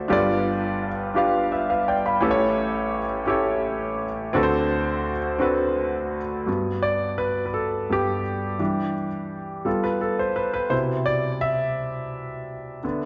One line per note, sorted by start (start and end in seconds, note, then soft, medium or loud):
0.00 0.08 D4 medium
0.00 0.12 F#4 medium
0.00 0.11 A4 medium
0.00 0.11 C5 medium
0.00 0.11 D5 medium
0.00 0.11 E5 medium
0.08 2.18 G1 medium
0.08 2.18 G2 medium
0.08 0.86 D4 medium
0.08 0.87 F4 medium
0.08 0.87 G4 medium
0.08 0.17 A4 medium
0.13 0.88 D5 medium
0.17 0.91 B4 medium
1.14 1.92 D4 medium
1.14 1.93 F4 medium
1.14 1.93 G4 medium
1.14 1.51 B4 medium
1.14 1.52 F5 medium
1.52 1.68 B4 soft
1.52 1.68 E5 medium
1.70 1.86 B4 medium
1.70 1.86 F5 medium
1.88 2.05 D5 medium
1.88 2.04 G5 medium
2.06 2.39 F5 medium
2.06 2.39 B5 medium
2.21 4.31 A1 medium
2.21 4.31 A2 medium
2.21 2.99 C#4 medium
2.21 2.99 E4 medium
2.21 2.99 G4 medium
2.21 3.00 A4 medium
2.21 2.30 B4 medium
2.31 3.04 C#5 loud
3.26 4.04 C#4 medium
3.26 4.05 E4 medium
3.26 4.05 G4 medium
3.26 4.06 A4 medium
3.26 4.06 C#5 medium
4.33 6.43 D2 medium
4.33 6.43 D3 medium
4.33 5.11 C4 medium
4.33 5.12 D4 medium
4.33 5.12 F#4 medium
4.33 5.13 A4 medium
4.33 4.42 B4 medium
4.43 5.16 C5 medium
5.39 6.17 C4 medium
5.39 6.17 D4 medium
5.39 6.18 F#4 medium
5.39 6.18 A4 medium
5.39 6.19 B4 medium
6.47 7.88 G2 soft
6.47 7.89 B3 soft
6.47 8.56 F#4 soft
6.82 7.19 D5 medium
7.18 7.44 B4 medium
7.46 7.53 B4 medium
7.54 7.90 A4 medium
7.90 8.21 G2 soft
7.90 8.21 G3 soft
7.90 8.22 B3 soft
7.90 8.93 G4 medium
8.59 9.06 E3 soft
8.59 9.07 G3 soft
8.59 9.07 D4 soft
9.65 10.67 G3 soft
9.65 10.68 B3 soft
9.65 10.68 F4 medium
9.65 9.84 A4 medium
9.84 10.00 B4 medium
10.01 10.18 A4 medium
10.19 10.37 C5 medium
10.36 10.52 B4 medium
10.54 10.72 B4 medium
10.70 12.79 B2 soft
10.70 12.79 C3 soft
10.70 12.80 E4 medium
10.70 10.78 C5 medium
11.06 11.43 D5 medium
11.41 13.05 E5 medium
12.83 13.05 D3 soft
12.83 13.05 B3 soft
12.83 13.05 D4 soft